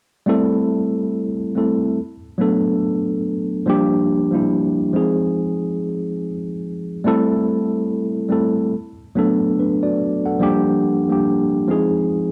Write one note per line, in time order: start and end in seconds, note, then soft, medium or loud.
0.26 1.25 G3 loud
0.26 1.25 A3 medium
0.26 1.26 C4 medium
0.26 1.26 E4 medium
0.26 1.26 A4 loud
1.55 1.97 G3 medium
1.55 1.97 A3 medium
1.55 1.98 C4 medium
1.55 1.98 E4 medium
1.55 1.99 A4 medium
2.38 3.36 F#3 medium
2.38 3.37 A3 medium
2.38 3.37 B3 medium
2.38 3.38 D4 medium
2.38 3.38 A4 medium
3.66 4.15 F3 loud
3.66 4.15 G3 medium
3.66 4.16 A#3 medium
3.66 4.16 D4 medium
3.66 4.17 G4 loud
4.31 4.79 F3 medium
4.31 4.79 G3 medium
4.31 4.80 A#3 medium
4.31 4.80 D4 medium
4.31 4.81 E4 medium
4.93 6.29 F3 medium
4.93 6.30 G#3 medium
4.93 6.30 C4 medium
4.93 6.31 D#4 medium
4.93 6.31 G#4 medium
7.04 8.02 G3 loud
7.04 8.02 A3 medium
7.04 8.03 C4 medium
7.04 8.03 E4 medium
7.04 8.04 A4 loud
8.29 8.72 G3 medium
8.29 8.73 A3 medium
8.29 8.73 C4 medium
8.29 8.73 E4 medium
8.29 8.74 A4 medium
9.15 10.13 F#3 medium
9.15 10.13 A3 medium
9.15 10.14 B3 medium
9.15 9.59 D4 medium
9.15 9.59 A4 medium
9.59 9.82 D4 medium
9.59 9.82 B4 medium
9.83 10.23 F#4 soft
9.83 10.23 D5 medium
10.25 10.65 A4 medium
10.25 10.65 F#5 medium
10.39 10.90 F3 medium
10.39 10.90 G3 medium
10.39 10.91 A#3 medium
10.39 10.91 D4 medium
10.39 10.91 G4 loud
11.09 11.56 F3 medium
11.09 11.56 G3 medium
11.09 11.57 A#3 medium
11.09 11.57 D4 medium
11.09 11.58 G4 medium
11.68 12.32 F3 medium
11.68 12.32 G#3 medium
11.68 12.32 C4 medium
11.68 12.32 D#4 medium
11.68 12.32 G#4 medium